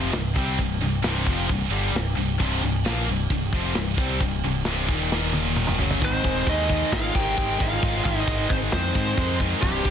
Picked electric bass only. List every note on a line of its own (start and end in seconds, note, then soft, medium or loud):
0.00 0.12 F1 loud
0.13 0.34 C1 medium
0.36 0.57 C2 loud
0.58 0.80 C1 medium
0.81 1.02 C1 medium
1.03 1.25 C1 medium
1.27 1.48 F1 loud
1.50 1.70 C1 medium
1.71 1.92 G1 medium
1.93 2.15 C1 medium
2.16 2.38 C1 medium
2.40 2.61 C1 loud
2.62 2.84 C1 medium
2.86 3.07 A#1 loud
3.08 3.29 C1 medium
3.30 3.51 C1 medium
3.52 3.74 F1 medium
3.76 3.97 C1 medium
3.97 4.19 C2 loud
4.20 4.42 C1 medium
4.44 4.65 C1 loud
4.65 4.87 C1 loud
4.89 5.75 D#1 medium
5.78 6.00 F#1 loud
6.01 6.19 G#1 medium
6.24 6.42 D#1 loud
6.46 6.82 D#2 medium
6.92 7.10 G#1 loud
7.15 7.33 G#1 medium
7.38 7.55 G#1 medium
7.60 7.78 G#1 medium
7.82 8.00 G#1 loud
8.05 8.23 G#1 loud
8.27 8.45 G#1 medium
8.50 8.68 G#1 medium
8.73 8.90 F2 medium
8.95 9.13 G#2 medium
9.17 9.53 F2 loud
9.62 9.80 C1 loud
9.85 9.90 G1 loud